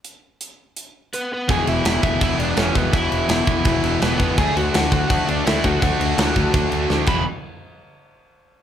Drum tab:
CC |--------|xxxxxxxx|xxxxxxxx|xxxxxxxx|
HH |x-x-x-x-|--------|--------|--------|
SD |--------|--o---o-|--o---o-|--o---o-|
BD |--------|o--oo--o|o--oo--o|o--oo--o|

CC |xxxxxx-x|--------|
HH |--------|--------|
SD |--o---o-|--------|
BD |o--oo--o|--------|